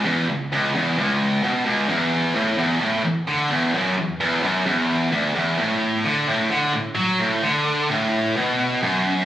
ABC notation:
X:1
M:4/4
L:1/8
Q:1/4=130
K:Dlyd
V:1 name="Distorted electric guitar" clef=bass
E,, C,, C,, E,, C,,2 B,, C,, | E,,2 A,, E,, A,, E,, D, E,, | F,, E,, E,, F,, E,,2 D,, E,, | A,,2 D, A,, D, A,, F, A,, |
D,2 A,,2 B,,2 F,,2 |]